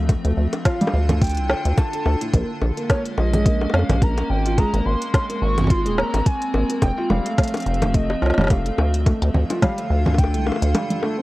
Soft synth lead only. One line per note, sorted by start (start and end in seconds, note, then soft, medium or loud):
0.65 1.17 F5 medium
1.21 1.79 G5 loud
1.78 2.21 A5 loud
2.90 3.02 C#5 medium
3.18 3.75 D#5 loud
3.74 4.04 F5 medium
4.02 4.29 A#5 loud
4.30 4.59 G5 loud
4.58 4.87 A#5 loud
4.86 5.44 C6 loud
5.42 5.72 C#6 loud
5.70 5.99 C6 loud
5.98 6.27 A#5 loud
6.26 6.70 G#5 loud
6.82 7.08 G5 loud
7.10 7.96 F5 loud
7.94 8.52 D#5 loud
8.50 8.94 F5 medium
9.62 10.20 F5 loud
10.18 10.48 G5 loud
10.46 11.02 F5 loud